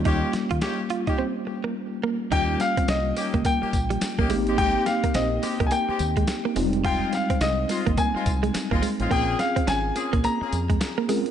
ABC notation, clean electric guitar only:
X:1
M:4/4
L:1/16
Q:"Swing 16ths" 1/4=106
K:Ebmix
V:1 name="Clean electric guitar"
E z2 F z2 F E C z2 B, z2 B, z | E z2 C D z2 B, B, z2 G, z B, A, z | A, z2 B, C z2 B, B, z2 A, z B, A, z | F z2 C E z2 B, B, z2 A, z B, A, z |
B, z2 C D z2 B, B, z2 A, z B, A, z |]